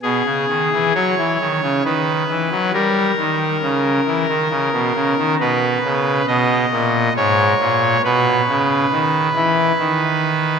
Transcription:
<<
  \new Staff \with { instrumentName = "Pipe organ" } { \time 3/4 \key gis \minor \tempo 4 = 68 gis'4 cis''4 b'4 | ais'2. | b'4 dis''4 cis''4 | b'2. | }
  \new Staff \with { instrumentName = "Pipe organ" } { \clef bass \time 3/4 \key gis \minor b,16 cis16 dis16 e16 fis16 e16 dis16 cis16 dis8 e16 fis16 | g8 dis8 cis8 e16 dis16 cis16 b,16 cis16 dis16 | b,8 cis8 b,8 ais,8 gis,8 ais,8 | b,8 cis8 dis8 e8 dis4 | }
>>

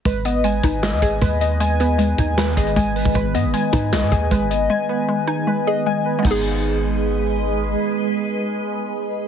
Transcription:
<<
  \new Staff \with { instrumentName = "Synth keys" } { \time 4/4 \key gis \minor \tempo 4 = 155 b'8 dis''8 gis''8 b'8 dis''8 gis''8 b'8 dis''8 | gis''8 b'4 gis''8 b'8 dis''8 gis''8 b'8 | b'8 dis''8 gis''8 b'8 dis''8 gis''8 b'8 dis''8 | gis''8 b'4 gis''8 b'8 dis''8 gis''8 b'8 |
<b dis' gis'>1~ | <b dis' gis'>1 | }
  \new Staff \with { instrumentName = "Ambient pad" } { \time 4/4 \key gis \minor <dis gis b>1~ | <dis gis b>1~ | <dis gis b>1~ | <dis gis b>1 |
<gis gis' b' dis''>1~ | <gis gis' b' dis''>1 | }
  \new Staff \with { instrumentName = "Synth pluck" } { \clef bass \time 4/4 \key gis \minor gis8 b8 gis8 dis'8 gis8 gis'8 gis4 | gis8 b8 gis8 dis'8 gis8 gis'8 gis4 | gis8 b8 gis8 dis'8 gis8 gis'8 gis4 | gis8 b8 gis8 dis'8 gis8 gis'8 gis4 |
<gis b dis' gis'>1~ | <gis b dis' gis'>1 | }
  \new Staff \with { instrumentName = "808-style bass" } { \clef bass \time 4/4 \key gis \minor gis,,4. gis,,8. dis,16 gis,,8 dis,4~ | dis,4. dis,4 gis,,8 gis,,8. gis,,16 | gis,,8 gis,16 gis,,16 r8 gis,8 b,,16 gis,16 dis,8 gis,,4 | r1 |
gis,,1 | r1 | }
  \new DrumStaff \with { instrumentName = "Drums" } \drummode { \time 4/4 <hh bd>8 hh8 hh8 <hh bd>8 <hc hh sn>8 <hh bd>8 <hh bd>8 hh8 | hh8 hh8 hh8 <hh bd>8 <hc hh sn>8 <hh bd>16 hh16 <hh bd>8 hho16 bd16 | <hh bd>8 hh8 hh8 <hh bd>8 <hc hh sn>8 <hh bd>8 <hh bd>8 hh8 | r4 r4 r4 r4 |
<cymc bd>4 r4 r4 r4 | r4 r4 r4 r4 | }
>>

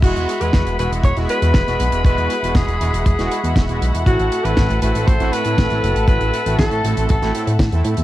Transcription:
<<
  \new Staff \with { instrumentName = "String section" } { \time 4/4 \key e \major \tempo 4 = 119 << { <gis' b''>1~ | <gis' b''>1 | <a' a''>1~ | <a' a''>1 | } \\ { <e'' fis''>1~ | <e'' fis''>1~ | <e'' fis''>1~ | <e'' fis''>1 | } >> }
  \new Staff \with { instrumentName = "Alto saxophone" } { \time 4/4 \key e \major fis'8. b'8. b'8 cis''8 b'4. | b'4 gis'4 gis'4 r4 | fis'8. b'8. b'8 c''8 b'4. | b'4 a'4 a'4 r4 | }
  \new Staff \with { instrumentName = "Analog polysynth" } { \time 4/4 \key e \major <gis b e' fis'>8 r16 <gis b e' fis'>8. <gis b e' fis'>8 r16 <gis b e' fis'>8 <gis b e' fis'>8 <gis b e' fis'>8. | <gis b e' fis'>8 r16 <gis b e' fis'>8. <gis b e' fis'>8 r16 <gis b e' fis'>8 <gis b e' fis'>8 <gis b e' fis'>8. | <a, a c' e' fis'>8 r16 <a, a c' e' fis'>8. <a, a c' e' fis'>8 r16 <a, a c' e' fis'>8 <a, a c' e' fis'>8 <a, a c' e' fis'>8. | <a, a c' e' fis'>8 r16 <a, a c' e' fis'>8. <a, a c' e' fis'>8 r16 <a, a c' e' fis'>16 <a, a c' e' a'>16 r8 <a, a c' e' a'>8. | }
  \new Staff \with { instrumentName = "Analog synth bass" } { \clef bass \time 4/4 \key e \major e,,16 e,,16 r16 e,,16 e,,16 e,,16 e,,16 e,,16 e,,16 e,,16 r16 e,16 e,,16 e,,16 b,,16 e,,16 | e,,16 e,,16 r16 e,,16 e,,16 e,,16 e,,16 e,,16 e,,16 e,,16 r16 e,16 e,,16 e,,16 b,,16 e,,16 | a,,16 a,,16 r16 a,,16 a,,16 a,,16 a,,16 a,,16 a,,16 a,,16 r16 a,16 a,,16 a,,16 fis,,16 a,,16 | a,,16 a,,16 r16 a,,16 a,,16 a,,16 a,,16 a,,16 a,,16 a,,16 r16 a,16 a,16 e,16 a,16 e,16 | }
  \new DrumStaff \with { instrumentName = "Drums" } \drummode { \time 4/4 <cymc hh bd>16 hh16 hh16 hh16 <hh bd sn>16 hh16 hh16 hh16 <hh bd>16 hh16 hh16 hh16 <hh bd sn>16 <hh sn>16 hh16 hh16 | <hh bd>16 hh16 hh16 hh16 <hh bd sn>16 hh16 hh16 hh16 <hh bd>16 <hh sn>16 hh16 hh16 <hh bd sn>16 hh16 hh16 hh16 | <hh bd>16 hh16 hh16 hh16 <hh bd sn>16 hh16 hh16 hh16 <hh bd>16 hh16 hh16 hh16 <hh bd sn>16 <hh sn>16 hh16 hh16 | <hh bd>16 hh16 hh16 hh16 <hh bd sn>16 hh16 hh16 hh16 <hh bd>16 <hh sn>16 hh16 hh16 <hh bd sn>16 hh16 hh16 hh16 | }
>>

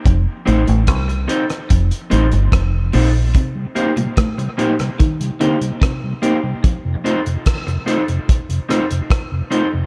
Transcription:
<<
  \new Staff \with { instrumentName = "Clean electric guitar" } { \time 4/4 \key f \mixolydian \tempo 4 = 73 r8 <c' ees' a' c''>8 r8 <c' ees' a' c''>8 r8 <c' ees' a' c''>8 r8 <c' ees' a' c''>8 | r8 <bes ees' g' c''>8 r8 <bes ees' g' c''>8 r8 <bes ees' g' c''>8 r8 <bes ees' g' c''>8 | r8 <c' ees' a' c''>8 r8 <c' ees' a' c''>8 r8 <c' ees' a' c''>8 r8 <c' ees' a' c''>8 | }
  \new Staff \with { instrumentName = "Tonewheel organ" } { \time 4/4 \key f \mixolydian r1 | r8 <bes c' ees'>8 r8 <bes c' ees'>8 r8 <bes c' ees'>8 r8 <bes c' ees'>8 | r8 <a ees' f'>8 r8 <a ees' f'>8 r8 <a ees' f'>8 r8 <a ees' f'>8 | }
  \new Staff \with { instrumentName = "Tonewheel organ" } { \clef bass \time 4/4 \key f \mixolydian r1 | r16 <c g>16 r16 <c g>16 r16 <c g>16 r16 <c g>16 r16 <c g>16 r16 <c g>16 r16 <c g>16 r16 <c g>16 | r16 <f, c>16 r16 <f, c>16 r16 <f, c>16 r16 <f, c>16 r16 <f, c>16 r16 <f, c>16 r16 <f, c>16 r16 <f, c>16 | }
  \new Staff \with { instrumentName = "Clean electric guitar" } { \clef bass \time 4/4 \key f \mixolydian f,16 r16 a,16 a,16 c8 r8 f,16 r16 a,16 g,16 f,8 bes,8 | c8 r16 bes,16 a,8 bes,8 ees8 d16 r16 c8 r8 | f,16 r2. r8. | }
  \new Staff \with { instrumentName = "Fingered electric bass" } { \clef bass \time 4/4 \key f \mixolydian f,,16 r16 a,,16 a,,16 c,8 r8 f,,16 r16 a,,16 g,,16 f,,8 bes,,8 | r1 | r1 | }
  \new DrumStaff \with { instrumentName = "Drums" } \drummode { \time 4/4 <hh bd>8 hh16 hh16 <hh bd ss>16 hh16 hh16 <hh ss>16 <hh bd>16 hh16 hh16 hh16 <hh bd ss>8 hho8 | <hh bd>8 hh16 hh16 <hh bd ss>16 hh16 hh16 <hh ss>16 <hh bd>16 hh16 hh16 hh16 <hh bd ss>8 hh8 | <hh bd>8 hh16 hh16 <hh bd ss>16 hh16 hh16 hh16 <hh bd>16 hh16 <hh ss>16 hh16 <hh bd ss>8 hh8 | }
>>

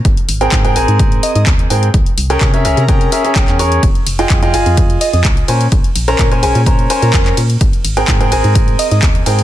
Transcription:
<<
  \new Staff \with { instrumentName = "Soft synth lead" } { \time 4/4 \key aes \major \tempo 4 = 127 r2 r8 ees''16 ees''16 r4 | r8. bes'8 r8 bes'4. r8. | r2 r8 ees''16 ees''16 r4 | r8. bes'8 r16 aes'8 r8. bes'8. r8 |
r2 r8 ees''16 ees''16 r4 | }
  \new Staff \with { instrumentName = "Grand piano" } { \time 4/4 \key aes \major r8. <c' aes' bes' g''>8 <c' aes' bes' g''>16 <c' aes' bes' aes''>2 <c' aes' bes' g''>16 r16 | r8. <des' aes' bes' g''>8 <des' aes' bes' e''>16 <des' aes' bes' e''>16 r16 <des' aes' bes' g''>8 <des' aes' bes' e''>16 <des' aes' bes' e''>16 <aes' bes' g''>8 <des' aes' bes' des''>8 | r8. <f' aes' ees'' g''>8 <f' aes' ees'' g''>16 <f' aes' ees'' aes''>2 <des' bes' c'' aes''>16 r16 | r8. <des' bes' c'' bes''>8 <des' bes' c'' aes''>16 <des' bes' c'' aes''>16 r16 <des' bes' c'' bes''>8 <des' bes' c'' aes''>8 <des' bes' c''>8 r8 |
r8. <c' aes' bes' g''>8 <c' aes' bes' g''>16 <c' aes' bes' aes''>2 <c' aes' bes' g''>16 r16 | }
  \new Staff \with { instrumentName = "FM bass" } { \clef bass \time 4/4 \key aes \major aes,,16 r16 aes,,8 aes,8 aes,,16 aes,8. r16 aes,16 ees,8 aes,8 | c,16 r16 c,8 c8 c,16 c8. r8 bes,,16 e,8. | f,,16 r16 f,,8 f,8 f,,16 f,8. r16 f,16 r8 bes,8 | bes,,16 r16 bes,,8 bes,8 bes,,16 bes,8. r16 bes,16 r8 bes,8 |
aes,,16 r16 aes,,8 aes,8 aes,,16 aes,8. r16 aes,16 ees,8 aes,8 | }
  \new DrumStaff \with { instrumentName = "Drums" } \drummode { \time 4/4 <hh bd>16 hh16 hho16 hh16 <hc hh bd>16 hh16 hho16 hh16 <hh bd>16 hh16 hho16 hh16 <hc hh bd>16 hh16 hho16 hh16 | <hh bd>16 hh16 hho16 hh16 <hc hh bd>16 hh16 hho16 hh16 <hh bd>16 hh16 hho16 hh16 <hc hh bd>16 <hc hh>16 hho16 hh16 | <hh bd cymr>16 hh16 <hho cymr>16 hh16 <hc hh bd cymr>16 hh16 <hho cymr>16 hh16 <hh bd cymr>16 hh16 <hho cymr>16 hh16 <hc hh bd cymr>16 hh16 <hho cymr>16 hh16 | <hh bd cymr>16 hh16 <hho cymr>16 hh16 <hc hh bd cymr>16 hh16 <hho cymr>16 hh16 <hh bd cymr>16 hh16 <hho cymr>16 hh16 <hc hh bd cymr>16 <hc hh>16 <hho cymr>16 hh16 |
<hh bd cymr>16 hh16 <hho cymr>16 hh16 <hc hh bd cymr>16 hh16 <hho cymr>16 hh16 <hh bd cymr>16 hh16 <hho cymr>16 hh16 <hc hh bd cymr>16 hh16 <hho cymr>16 hh16 | }
>>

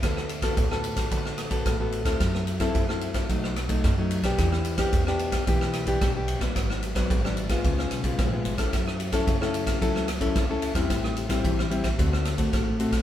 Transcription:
<<
  \new Staff \with { instrumentName = "Nylon-string guitar" } { \time 4/4 \key d \major \tempo 4 = 110 << { <b fis' a'>8 r16 <b fis' a'>8 <b fis' a'>8. <b fis' a'>8. <b fis' a'>8 <b fis' a'>8 <c' e' a'>16~ | <c' e' a'>8. <c' e' a'>8 <c' e' a'>8. <fis a dis'>8 r16 <fis a dis'>8 <fis a dis'>8 <b d' g'>16~ | <b d' g'>8. <b d' g'>8 <b d' g'>8. <b d' g'>8. <b d' g'>8 <b d' g'>8 <fis b d'>16~ | <fis b d'>8. <fis b d'>8 <fis b d'>8 <gis b f'>4 <gis b eis'>8 <gis b eis'>8 <cis' e' a'>16~ |
<cis' e' a'>8. <cis' e' a'>8 <cis' e' a'>8. <cis' e' a'>8 r16 <cis' e' a'>8 <cis' e' a'>8 <g c' e'>16~ | <g c' e'>8. <g c' e'>8. <g c' e'>16 r16 <a c' fis'>8. <a c' fis'>8. <a c' fis'>16 r16 | } \\ { d4 a,4 d4 a,4 | fis4 fis4 b,4 fis,4 | e4 b,4 e4 b,4 | gis,4 gis,4 cis4 gis,4 |
fis4 cis4 fis4 cis4 | a,4 e4 d4 a,4 | } >> }
  \new Staff \with { instrumentName = "Upright bass" } { \clef bass \time 4/4 \key d \major d,4 d,4 a,,4 a,,8. d,16 | fis,4 fis,4 b,,4 fis,8. b,,16 | e,4 e,4 b,,4 b,,8. a,,16 | gis,,4 gis,,4 cis,8 b,,8 bes,,8 gis,,8 |
fis,4 fis,4 cis,4 cis,8. e,16 | a,,4 a,,4 d,4 a,,8. a,,16 | }
  \new DrumStaff \with { instrumentName = "Drums" } \drummode { \time 4/4 <bd cymr ss>16 ss16 cymr16 <bd cymr ss>16 <bd cymr>16 ss16 cymr16 <bd cymr ss>16 <bd cymr>16 ss16 <cymr ss>16 <bd cymr>16 <bd cymr ss>8 cymr16 <bd cymr ss>16 | <bd cymr ss>16 ss16 cymr16 <bd cymr ss>16 <bd cymr>16 ss16 cymr16 <bd cymr ss>16 <bd cymr>16 ss16 <cymr ss>16 <bd cymr>16 <bd cymr ss>8 cymr16 <bd cymr ss>16 | <bd cymr ss>16 ss16 cymr16 <bd cymr ss>16 <bd cymr>16 ss16 cymr16 <bd cymr ss>16 <bd cymr>16 ss16 <cymr ss>16 <bd cymr>16 <bd cymr ss>8 cymr16 <bd cymr ss>16 | <bd cymr ss>16 ss16 cymr16 <bd cymr ss>16 <bd cymr>16 ss16 cymr16 <bd cymr ss>16 <bd cymr>16 ss16 <cymr ss>16 <bd cymr>16 <bd cymr ss>8 cymr16 <bd cymr ss>16 |
<bd cymr ss>16 ss16 cymr16 <bd cymr ss>16 <bd cymr>16 ss16 cymr16 <bd cymr ss>16 <bd cymr>16 ss16 <cymr ss>16 <bd cymr>16 <bd cymr ss>8 cymr16 <bd cymr ss>16 | <bd cymr ss>16 ss16 cymr16 <bd cymr ss>16 <bd cymr>16 ss16 cymr16 <bd cymr ss>16 <bd cymr>16 ss16 <cymr ss>16 <bd cymr>16 <bd cymr ss>8 cymr16 <bd cymr ss>16 | }
>>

